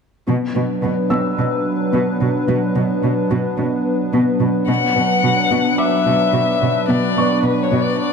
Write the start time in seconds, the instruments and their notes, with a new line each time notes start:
0.27 cello section B2, analog synth pad F#3 B3 D4 B4, synth pluck B3
0.55 cello section B2, synth pluck B4
0.83 cello section B2, synth pluck B4
1.10 cello section B2, felt piano E6
1.37 cello section B2, synth pluck D4
1.93 cello section B2, synth pluck B3
2.20 cello section B2, synth pluck D4
2.48 cello section B2, synth pluck B3
2.76 cello section B2, synth pluck B4
3.03 cello section B2, synth pluck B4
3.31 cello section B2, synth pluck B3
3.58 cello section B2, synth pluck D4
4.13 cello section B2, synth pluck B3
4.40 cello section B2
4.68 cello section B2, analog synth pad F#3 B3 D4 B4, synth pluck B3, violin F#5
4.95 cello section B2, synth pluck B4
5.24 cello section B2, synth pluck B4
5.51 cello section B2, synth pluck B3
5.78 violin E5, felt piano D6
6.06 cello section B2, synth pluck B4
6.33 cello section B2, synth pluck B3
6.61 cello section B2, synth pluck B4
6.88 cello section B2, synth pluck B3, violin D5
7.16 cello section B2, synth pluck B4, felt piano D5 C#6
7.43 cello section B2, violin B4, synth pluck B4
7.63 violin C#5
7.71 cello section B2, synth pluck B3
7.82 violin D5
8.00 violin D5